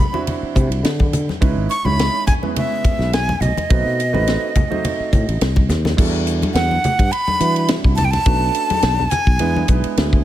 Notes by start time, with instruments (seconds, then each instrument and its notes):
Already playing: flute B5
0.13 grand piano F#3 C4 D4 E4 F#4, high conga
0.27 ride, low conga
0.43 muted fretless electric bass stroke
0.55 fretless electric bass C3, kick, hi-hat pedal, ride, low conga
0.70 fretless electric bass C2, ride
0.83 fretless electric bass D3, snare, ride
1.00 kick, high conga
1.13 hi-hat pedal, ride, low conga
1.29 snare, high conga
1.40 fretless electric bass C#2, grand piano G#3 C#4 D#4 E4 B4, kick, ride
1.56 fretless electric bass G#1
1.70 flute C#6, hi-hat pedal, ride
1.84 fretless electric bass C#2, grand piano G#3 C#4 D#4 E4 C#5, flute B5, high conga
1.99 snare, ride
2.27 flute G#5, kick, hi-hat pedal, ride, high conga, low conga
2.42 grand piano G#3 B3 C#4 E4 B4, high conga
2.56 flute E5, ride, low conga
2.84 muted fretless electric bass stroke, kick, hi-hat pedal, ride, low conga
2.99 fretless electric bass B1, snare
3.13 flute G#5, snare, ride
3.29 high conga
3.41 fretless electric bass B1, flute D#5, hi-hat pedal, ride, low conga
3.58 ride, high conga
3.69 fretless electric bass B1, grand piano A3 C4 D#4 F#4 B4, kick, ride
3.85 fretless electric bass B2
4.00 hi-hat pedal, ride
4.13 fretless electric bass A1, grand piano A3 C4 D#4 F#4 B4, high conga
4.27 snare, ride
4.55 kick, hi-hat pedal, ride, high conga, low conga
4.70 grand piano A3 C4 D#4 F#4 C5, high conga
4.85 ride, low conga
5.00 muted fretless electric bass stroke
5.13 fretless electric bass A2, kick, hi-hat pedal, ride, low conga
5.28 fretless electric bass A1, ride
5.41 fretless electric bass C2, snare, ride
5.56 kick, high conga
5.69 fretless electric bass D#2, snare, hi-hat pedal, low conga
5.85 snare, high conga
5.97 fretless electric bass E2, grand piano G3 D4 E4 F#4 A4, kick, crash
6.27 hi-hat pedal, ride
6.42 ride, high conga
6.54 fretless electric bass E2, flute F#5, snare, ride
6.71 high conga
6.84 hi-hat pedal, ride, low conga
6.99 fretless electric bass G2, kick, ride
7.12 flute B5, ride
7.28 muted fretless electric bass stroke, high conga
7.40 fretless electric bass E3, grand piano G3 D4 E4 F#4 B4, hi-hat pedal, ride
7.56 ride
7.68 snare, ride
7.84 fretless electric bass C2, kick
7.96 flute A5, hi-hat pedal, ride, high conga, low conga
8.04 flute G5
8.11 flute A5, snare, ride, high conga
8.26 fretless electric bass B1, grand piano A3 C#4 D4 F#4 B4, kick, ride
8.54 hi-hat pedal, ride
8.70 muted fretless electric bass stroke, ride, high conga
8.82 fretless electric bass B1, snare, ride
8.99 high conga
9.10 flute G#5, hi-hat pedal, ride, low conga
9.27 fretless electric bass B1, kick
9.39 fretless electric bass E2, grand piano G#3 B3 D4 E4 B4, ride
9.56 high conga
9.68 fretless electric bass B1, grand piano G#3 B3 D4 E4 B4, kick, hi-hat pedal, ride
9.84 muted fretless electric bass stroke, ride
9.97 fretless electric bass D2, snare, ride
10.13 kick